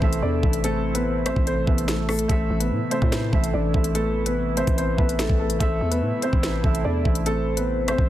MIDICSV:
0, 0, Header, 1, 7, 480
1, 0, Start_track
1, 0, Key_signature, 0, "minor"
1, 0, Tempo, 413793
1, 741, Time_signature, 4, 2, 24, 8
1, 9384, End_track
2, 0, Start_track
2, 0, Title_t, "Soft synth lead"
2, 0, Program_c, 0, 80
2, 21, Note_on_c, 0, 69, 90
2, 698, Note_off_c, 0, 69, 0
2, 744, Note_on_c, 0, 72, 118
2, 1656, Note_off_c, 0, 72, 0
2, 1702, Note_on_c, 0, 69, 79
2, 2153, Note_off_c, 0, 69, 0
2, 2662, Note_on_c, 0, 76, 115
2, 3338, Note_off_c, 0, 76, 0
2, 3382, Note_on_c, 0, 72, 81
2, 3610, Note_off_c, 0, 72, 0
2, 3622, Note_on_c, 0, 71, 86
2, 3850, Note_off_c, 0, 71, 0
2, 3862, Note_on_c, 0, 69, 97
2, 4539, Note_off_c, 0, 69, 0
2, 4583, Note_on_c, 0, 71, 119
2, 6456, Note_off_c, 0, 71, 0
2, 6501, Note_on_c, 0, 76, 106
2, 7178, Note_off_c, 0, 76, 0
2, 7222, Note_on_c, 0, 72, 90
2, 7450, Note_off_c, 0, 72, 0
2, 7462, Note_on_c, 0, 71, 93
2, 7690, Note_off_c, 0, 71, 0
2, 7702, Note_on_c, 0, 69, 92
2, 8379, Note_off_c, 0, 69, 0
2, 8422, Note_on_c, 0, 72, 116
2, 9335, Note_off_c, 0, 72, 0
2, 9384, End_track
3, 0, Start_track
3, 0, Title_t, "Grand piano"
3, 0, Program_c, 1, 0
3, 0, Control_c, 1, 64, 127
3, 0, Note_on_c, 1, 57, 80
3, 0, Note_on_c, 1, 69, 73
3, 0, Note_on_c, 1, 72, 69
3, 0, Note_on_c, 1, 76, 84
3, 3, Note_off_c, 1, 57, 0
3, 3, Note_on_c, 1, 57, 77
3, 16, Note_off_c, 1, 69, 0
3, 16, Note_on_c, 1, 69, 75
3, 29, Note_off_c, 1, 72, 0
3, 29, Note_on_c, 1, 72, 70
3, 42, Note_off_c, 1, 76, 0
3, 42, Note_on_c, 1, 76, 91
3, 420, Note_off_c, 1, 57, 0
3, 426, Note_off_c, 1, 69, 0
3, 433, Note_off_c, 1, 72, 0
3, 439, Note_off_c, 1, 76, 0
3, 484, Note_on_c, 1, 57, 70
3, 497, Note_on_c, 1, 69, 65
3, 510, Note_on_c, 1, 72, 61
3, 522, Note_on_c, 1, 76, 83
3, 1308, Note_off_c, 1, 57, 0
3, 1314, Note_off_c, 1, 69, 0
3, 1321, Note_off_c, 1, 72, 0
3, 1327, Note_off_c, 1, 76, 0
3, 1448, Note_on_c, 1, 57, 76
3, 1461, Note_on_c, 1, 69, 68
3, 1474, Note_on_c, 1, 72, 67
3, 1487, Note_on_c, 1, 76, 89
3, 1862, Note_off_c, 1, 57, 0
3, 1869, Note_off_c, 1, 69, 0
3, 1875, Note_off_c, 1, 72, 0
3, 1882, Note_off_c, 1, 76, 0
3, 1928, Note_on_c, 1, 57, 85
3, 1941, Note_on_c, 1, 69, 72
3, 1954, Note_on_c, 1, 72, 72
3, 1967, Note_on_c, 1, 76, 82
3, 2546, Note_off_c, 1, 57, 0
3, 2552, Note_off_c, 1, 69, 0
3, 2559, Note_off_c, 1, 72, 0
3, 2565, Note_off_c, 1, 76, 0
3, 2645, Note_on_c, 1, 57, 97
3, 2658, Note_on_c, 1, 69, 86
3, 2671, Note_on_c, 1, 72, 82
3, 2676, Control_c, 1, 64, 0
3, 2684, Note_on_c, 1, 76, 108
3, 2881, Control_c, 1, 64, 127
3, 3264, Note_off_c, 1, 57, 0
3, 3271, Note_off_c, 1, 69, 0
3, 3277, Note_off_c, 1, 72, 0
3, 3284, Note_off_c, 1, 76, 0
3, 3364, Note_on_c, 1, 57, 82
3, 3376, Note_on_c, 1, 69, 74
3, 3389, Note_on_c, 1, 72, 69
3, 3402, Note_on_c, 1, 76, 93
3, 3780, Note_off_c, 1, 57, 0
3, 3786, Note_off_c, 1, 69, 0
3, 3793, Note_off_c, 1, 72, 0
3, 3799, Note_off_c, 1, 76, 0
3, 3843, Note_on_c, 1, 57, 81
3, 3856, Note_on_c, 1, 69, 73
3, 3870, Note_on_c, 1, 72, 72
3, 3883, Note_on_c, 1, 76, 84
3, 4260, Note_off_c, 1, 57, 0
3, 4266, Note_off_c, 1, 69, 0
3, 4273, Note_off_c, 1, 72, 0
3, 4279, Note_off_c, 1, 76, 0
3, 4327, Note_on_c, 1, 57, 70
3, 4340, Note_on_c, 1, 69, 67
3, 4353, Note_on_c, 1, 60, 70
3, 4366, Note_on_c, 1, 76, 79
3, 5149, Note_off_c, 1, 57, 0
3, 5156, Note_off_c, 1, 69, 0
3, 5162, Note_off_c, 1, 60, 0
3, 5169, Note_off_c, 1, 76, 0
3, 5282, Note_on_c, 1, 57, 79
3, 5296, Note_on_c, 1, 69, 70
3, 5309, Note_on_c, 1, 60, 72
3, 5322, Note_on_c, 1, 76, 86
3, 5699, Note_off_c, 1, 57, 0
3, 5706, Note_off_c, 1, 69, 0
3, 5713, Note_off_c, 1, 60, 0
3, 5719, Note_off_c, 1, 76, 0
3, 5758, Note_on_c, 1, 57, 80
3, 5772, Note_on_c, 1, 69, 70
3, 5785, Note_on_c, 1, 60, 74
3, 5798, Note_on_c, 1, 76, 89
3, 6381, Note_off_c, 1, 57, 0
3, 6388, Note_off_c, 1, 69, 0
3, 6394, Note_off_c, 1, 60, 0
3, 6401, Note_off_c, 1, 76, 0
3, 6483, Note_on_c, 1, 57, 102
3, 6497, Note_on_c, 1, 69, 93
3, 6510, Note_on_c, 1, 72, 94
3, 6519, Control_c, 1, 64, 0
3, 6523, Note_on_c, 1, 76, 112
3, 6714, Control_c, 1, 64, 127
3, 7104, Note_off_c, 1, 57, 0
3, 7110, Note_off_c, 1, 69, 0
3, 7117, Note_off_c, 1, 72, 0
3, 7123, Note_off_c, 1, 76, 0
3, 7202, Note_on_c, 1, 57, 81
3, 7215, Note_on_c, 1, 69, 74
3, 7228, Note_on_c, 1, 72, 71
3, 7241, Note_on_c, 1, 76, 87
3, 7619, Note_off_c, 1, 57, 0
3, 7625, Note_off_c, 1, 69, 0
3, 7632, Note_off_c, 1, 72, 0
3, 7639, Note_off_c, 1, 76, 0
3, 7682, Note_on_c, 1, 57, 78
3, 7696, Note_on_c, 1, 69, 74
3, 7709, Note_on_c, 1, 72, 70
3, 7722, Note_on_c, 1, 76, 89
3, 8099, Note_off_c, 1, 57, 0
3, 8106, Note_off_c, 1, 69, 0
3, 8113, Note_off_c, 1, 72, 0
3, 8119, Note_off_c, 1, 76, 0
3, 8164, Note_on_c, 1, 57, 72
3, 8177, Note_on_c, 1, 69, 67
3, 8190, Note_on_c, 1, 72, 64
3, 8203, Note_on_c, 1, 76, 81
3, 8987, Note_off_c, 1, 57, 0
3, 8994, Note_off_c, 1, 69, 0
3, 9001, Note_off_c, 1, 72, 0
3, 9007, Note_off_c, 1, 76, 0
3, 9128, Note_on_c, 1, 57, 73
3, 9141, Note_on_c, 1, 69, 67
3, 9154, Note_on_c, 1, 72, 68
3, 9167, Note_on_c, 1, 76, 90
3, 9384, Note_off_c, 1, 57, 0
3, 9384, Note_off_c, 1, 69, 0
3, 9384, Note_off_c, 1, 72, 0
3, 9384, Note_off_c, 1, 76, 0
3, 9384, End_track
4, 0, Start_track
4, 0, Title_t, "Grand piano"
4, 0, Program_c, 2, 0
4, 0, Note_on_c, 2, 60, 75
4, 0, Note_on_c, 2, 72, 87
4, 220, Note_off_c, 2, 72, 0
4, 225, Note_off_c, 2, 60, 0
4, 259, Note_on_c, 2, 74, 78
4, 268, Note_on_c, 2, 62, 60
4, 711, Note_off_c, 2, 74, 0
4, 716, Note_off_c, 2, 62, 0
4, 746, Note_on_c, 2, 69, 112
4, 756, Note_on_c, 2, 57, 89
4, 1082, Note_off_c, 2, 69, 0
4, 1088, Note_off_c, 2, 57, 0
4, 1099, Note_on_c, 2, 71, 87
4, 1107, Note_on_c, 2, 59, 68
4, 1438, Note_off_c, 2, 71, 0
4, 1443, Note_off_c, 2, 59, 0
4, 1462, Note_on_c, 2, 72, 89
4, 1471, Note_on_c, 2, 60, 72
4, 1665, Note_off_c, 2, 72, 0
4, 1670, Note_off_c, 2, 60, 0
4, 1704, Note_on_c, 2, 72, 96
4, 1714, Note_on_c, 2, 60, 71
4, 1907, Note_off_c, 2, 72, 0
4, 1912, Note_off_c, 2, 60, 0
4, 1941, Note_on_c, 2, 71, 78
4, 1950, Note_on_c, 2, 59, 63
4, 2145, Note_off_c, 2, 71, 0
4, 2150, Note_off_c, 2, 59, 0
4, 2183, Note_on_c, 2, 69, 87
4, 2193, Note_on_c, 2, 57, 66
4, 2386, Note_off_c, 2, 69, 0
4, 2391, Note_off_c, 2, 57, 0
4, 2422, Note_on_c, 2, 69, 98
4, 2431, Note_on_c, 2, 57, 69
4, 2625, Note_off_c, 2, 69, 0
4, 2630, Note_off_c, 2, 57, 0
4, 2656, Note_on_c, 2, 69, 95
4, 2665, Note_on_c, 2, 57, 77
4, 2997, Note_off_c, 2, 69, 0
4, 3002, Note_off_c, 2, 57, 0
4, 3017, Note_on_c, 2, 71, 81
4, 3026, Note_on_c, 2, 59, 63
4, 3357, Note_off_c, 2, 71, 0
4, 3362, Note_off_c, 2, 59, 0
4, 3380, Note_on_c, 2, 72, 90
4, 3390, Note_on_c, 2, 60, 75
4, 4058, Note_off_c, 2, 72, 0
4, 4063, Note_off_c, 2, 60, 0
4, 4102, Note_on_c, 2, 74, 71
4, 4112, Note_on_c, 2, 62, 62
4, 4553, Note_off_c, 2, 74, 0
4, 4558, Note_off_c, 2, 62, 0
4, 4580, Note_on_c, 2, 69, 104
4, 4589, Note_on_c, 2, 57, 91
4, 4919, Note_off_c, 2, 69, 0
4, 4924, Note_off_c, 2, 57, 0
4, 4943, Note_on_c, 2, 71, 86
4, 4952, Note_on_c, 2, 59, 67
4, 5280, Note_off_c, 2, 71, 0
4, 5285, Note_off_c, 2, 59, 0
4, 5303, Note_on_c, 2, 72, 93
4, 5312, Note_on_c, 2, 60, 72
4, 5506, Note_off_c, 2, 72, 0
4, 5511, Note_off_c, 2, 60, 0
4, 5544, Note_on_c, 2, 72, 93
4, 5553, Note_on_c, 2, 60, 69
4, 5747, Note_off_c, 2, 72, 0
4, 5752, Note_off_c, 2, 60, 0
4, 5778, Note_on_c, 2, 71, 84
4, 5787, Note_on_c, 2, 59, 61
4, 5983, Note_off_c, 2, 71, 0
4, 5988, Note_off_c, 2, 59, 0
4, 6021, Note_on_c, 2, 69, 89
4, 6030, Note_on_c, 2, 57, 67
4, 6225, Note_off_c, 2, 69, 0
4, 6230, Note_off_c, 2, 57, 0
4, 6261, Note_on_c, 2, 69, 85
4, 6270, Note_on_c, 2, 57, 65
4, 6465, Note_off_c, 2, 69, 0
4, 6470, Note_off_c, 2, 57, 0
4, 6501, Note_on_c, 2, 69, 101
4, 6510, Note_on_c, 2, 57, 70
4, 6840, Note_off_c, 2, 69, 0
4, 6845, Note_off_c, 2, 57, 0
4, 6860, Note_on_c, 2, 71, 85
4, 6869, Note_on_c, 2, 59, 68
4, 7199, Note_off_c, 2, 71, 0
4, 7204, Note_off_c, 2, 59, 0
4, 7225, Note_on_c, 2, 72, 88
4, 7234, Note_on_c, 2, 60, 74
4, 7900, Note_off_c, 2, 72, 0
4, 7905, Note_off_c, 2, 60, 0
4, 7940, Note_on_c, 2, 74, 80
4, 7948, Note_on_c, 2, 62, 57
4, 8392, Note_off_c, 2, 74, 0
4, 8396, Note_off_c, 2, 62, 0
4, 8426, Note_on_c, 2, 69, 113
4, 8436, Note_on_c, 2, 57, 91
4, 8763, Note_off_c, 2, 69, 0
4, 8767, Note_off_c, 2, 57, 0
4, 8779, Note_on_c, 2, 71, 87
4, 8788, Note_on_c, 2, 59, 68
4, 9119, Note_off_c, 2, 71, 0
4, 9123, Note_off_c, 2, 59, 0
4, 9142, Note_on_c, 2, 72, 92
4, 9151, Note_on_c, 2, 60, 73
4, 9345, Note_off_c, 2, 72, 0
4, 9350, Note_off_c, 2, 60, 0
4, 9384, End_track
5, 0, Start_track
5, 0, Title_t, "Analog synth pad"
5, 0, Program_c, 3, 89
5, 0, Note_on_c, 3, 48, 87
5, 0, Note_on_c, 3, 52, 77
5, 0, Note_on_c, 3, 57, 81
5, 0, Note_on_c, 3, 64, 96
5, 2615, Note_off_c, 3, 52, 0
5, 2623, Note_off_c, 3, 64, 0
5, 2663, Note_on_c, 3, 52, 78
5, 2663, Note_on_c, 3, 64, 94
5, 6455, Note_off_c, 3, 48, 0
5, 6464, Note_off_c, 3, 64, 0
5, 6502, Note_on_c, 3, 48, 85
5, 6502, Note_on_c, 3, 64, 96
5, 9384, Note_off_c, 3, 48, 0
5, 9384, Note_off_c, 3, 52, 0
5, 9384, Note_off_c, 3, 57, 0
5, 9384, Note_off_c, 3, 64, 0
5, 9384, End_track
6, 0, Start_track
6, 0, Title_t, "808-style bass"
6, 0, Program_c, 4, 38
6, 22, Note_on_c, 4, 33, 104
6, 252, Note_off_c, 4, 33, 0
6, 261, Note_on_c, 4, 40, 108
6, 492, Note_off_c, 4, 40, 0
6, 502, Note_on_c, 4, 33, 107
6, 1539, Note_off_c, 4, 33, 0
6, 1582, Note_on_c, 4, 33, 107
6, 1927, Note_off_c, 4, 33, 0
6, 1941, Note_on_c, 4, 33, 101
6, 2633, Note_off_c, 4, 33, 0
6, 2662, Note_on_c, 4, 33, 109
6, 2892, Note_off_c, 4, 33, 0
6, 2902, Note_on_c, 4, 33, 109
6, 3143, Note_on_c, 4, 45, 99
6, 3160, Note_off_c, 4, 33, 0
6, 3256, Note_off_c, 4, 45, 0
6, 3502, Note_on_c, 4, 45, 110
6, 3847, Note_off_c, 4, 45, 0
6, 3862, Note_on_c, 4, 33, 100
6, 4092, Note_off_c, 4, 33, 0
6, 4102, Note_on_c, 4, 33, 112
6, 4332, Note_off_c, 4, 33, 0
6, 4342, Note_on_c, 4, 33, 108
6, 5378, Note_off_c, 4, 33, 0
6, 5422, Note_on_c, 4, 33, 109
6, 5767, Note_off_c, 4, 33, 0
6, 5782, Note_on_c, 4, 33, 104
6, 6127, Note_off_c, 4, 33, 0
6, 6142, Note_on_c, 4, 33, 99
6, 6487, Note_off_c, 4, 33, 0
6, 6501, Note_on_c, 4, 33, 115
6, 6732, Note_off_c, 4, 33, 0
6, 6742, Note_on_c, 4, 40, 108
6, 6982, Note_on_c, 4, 45, 105
6, 7000, Note_off_c, 4, 40, 0
6, 7096, Note_off_c, 4, 45, 0
6, 7341, Note_on_c, 4, 33, 111
6, 7687, Note_off_c, 4, 33, 0
6, 7702, Note_on_c, 4, 33, 109
6, 7932, Note_off_c, 4, 33, 0
6, 7942, Note_on_c, 4, 40, 108
6, 8172, Note_off_c, 4, 40, 0
6, 8182, Note_on_c, 4, 33, 104
6, 9219, Note_off_c, 4, 33, 0
6, 9262, Note_on_c, 4, 33, 110
6, 9377, Note_off_c, 4, 33, 0
6, 9384, End_track
7, 0, Start_track
7, 0, Title_t, "Drums"
7, 22, Note_on_c, 9, 36, 95
7, 138, Note_off_c, 9, 36, 0
7, 146, Note_on_c, 9, 42, 75
7, 262, Note_off_c, 9, 42, 0
7, 502, Note_on_c, 9, 36, 95
7, 617, Note_on_c, 9, 42, 79
7, 618, Note_off_c, 9, 36, 0
7, 733, Note_off_c, 9, 42, 0
7, 742, Note_on_c, 9, 42, 86
7, 858, Note_off_c, 9, 42, 0
7, 1101, Note_on_c, 9, 42, 80
7, 1217, Note_off_c, 9, 42, 0
7, 1460, Note_on_c, 9, 42, 76
7, 1463, Note_on_c, 9, 37, 98
7, 1576, Note_off_c, 9, 42, 0
7, 1579, Note_off_c, 9, 37, 0
7, 1582, Note_on_c, 9, 36, 91
7, 1698, Note_off_c, 9, 36, 0
7, 1705, Note_on_c, 9, 42, 90
7, 1821, Note_off_c, 9, 42, 0
7, 1942, Note_on_c, 9, 36, 95
7, 2058, Note_off_c, 9, 36, 0
7, 2066, Note_on_c, 9, 42, 75
7, 2181, Note_on_c, 9, 38, 120
7, 2182, Note_off_c, 9, 42, 0
7, 2189, Note_on_c, 9, 42, 85
7, 2297, Note_off_c, 9, 38, 0
7, 2305, Note_off_c, 9, 42, 0
7, 2421, Note_on_c, 9, 46, 55
7, 2422, Note_on_c, 9, 37, 93
7, 2537, Note_off_c, 9, 46, 0
7, 2538, Note_off_c, 9, 37, 0
7, 2538, Note_on_c, 9, 42, 71
7, 2654, Note_off_c, 9, 42, 0
7, 2662, Note_on_c, 9, 36, 121
7, 2662, Note_on_c, 9, 42, 80
7, 2778, Note_off_c, 9, 36, 0
7, 2778, Note_off_c, 9, 42, 0
7, 3022, Note_on_c, 9, 42, 81
7, 3138, Note_off_c, 9, 42, 0
7, 3380, Note_on_c, 9, 42, 78
7, 3496, Note_off_c, 9, 42, 0
7, 3502, Note_on_c, 9, 36, 90
7, 3618, Note_off_c, 9, 36, 0
7, 3621, Note_on_c, 9, 38, 123
7, 3625, Note_on_c, 9, 42, 87
7, 3737, Note_off_c, 9, 38, 0
7, 3741, Note_off_c, 9, 42, 0
7, 3862, Note_on_c, 9, 36, 99
7, 3978, Note_off_c, 9, 36, 0
7, 3986, Note_on_c, 9, 42, 75
7, 4102, Note_off_c, 9, 42, 0
7, 4342, Note_on_c, 9, 36, 90
7, 4457, Note_on_c, 9, 42, 80
7, 4458, Note_off_c, 9, 36, 0
7, 4573, Note_off_c, 9, 42, 0
7, 4582, Note_on_c, 9, 42, 84
7, 4698, Note_off_c, 9, 42, 0
7, 4943, Note_on_c, 9, 42, 81
7, 5059, Note_off_c, 9, 42, 0
7, 5301, Note_on_c, 9, 42, 65
7, 5417, Note_off_c, 9, 42, 0
7, 5421, Note_on_c, 9, 42, 61
7, 5422, Note_on_c, 9, 36, 89
7, 5537, Note_off_c, 9, 42, 0
7, 5538, Note_off_c, 9, 36, 0
7, 5545, Note_on_c, 9, 42, 89
7, 5661, Note_off_c, 9, 42, 0
7, 5782, Note_on_c, 9, 36, 96
7, 5898, Note_off_c, 9, 36, 0
7, 5906, Note_on_c, 9, 42, 75
7, 6021, Note_on_c, 9, 38, 122
7, 6022, Note_off_c, 9, 42, 0
7, 6028, Note_on_c, 9, 42, 84
7, 6137, Note_off_c, 9, 38, 0
7, 6142, Note_on_c, 9, 36, 102
7, 6144, Note_off_c, 9, 42, 0
7, 6258, Note_off_c, 9, 36, 0
7, 6378, Note_on_c, 9, 42, 75
7, 6494, Note_off_c, 9, 42, 0
7, 6501, Note_on_c, 9, 36, 118
7, 6502, Note_on_c, 9, 42, 87
7, 6617, Note_off_c, 9, 36, 0
7, 6618, Note_off_c, 9, 42, 0
7, 6863, Note_on_c, 9, 42, 79
7, 6979, Note_off_c, 9, 42, 0
7, 7220, Note_on_c, 9, 42, 76
7, 7336, Note_off_c, 9, 42, 0
7, 7342, Note_on_c, 9, 36, 89
7, 7458, Note_off_c, 9, 36, 0
7, 7461, Note_on_c, 9, 38, 121
7, 7465, Note_on_c, 9, 42, 89
7, 7577, Note_off_c, 9, 38, 0
7, 7581, Note_off_c, 9, 42, 0
7, 7702, Note_on_c, 9, 36, 97
7, 7818, Note_off_c, 9, 36, 0
7, 7827, Note_on_c, 9, 42, 76
7, 7943, Note_off_c, 9, 42, 0
7, 8182, Note_on_c, 9, 36, 93
7, 8298, Note_off_c, 9, 36, 0
7, 8298, Note_on_c, 9, 42, 81
7, 8414, Note_off_c, 9, 42, 0
7, 8423, Note_on_c, 9, 42, 82
7, 8539, Note_off_c, 9, 42, 0
7, 8783, Note_on_c, 9, 42, 77
7, 8899, Note_off_c, 9, 42, 0
7, 9140, Note_on_c, 9, 42, 76
7, 9144, Note_on_c, 9, 37, 99
7, 9256, Note_off_c, 9, 42, 0
7, 9260, Note_off_c, 9, 37, 0
7, 9262, Note_on_c, 9, 36, 92
7, 9378, Note_off_c, 9, 36, 0
7, 9384, End_track
0, 0, End_of_file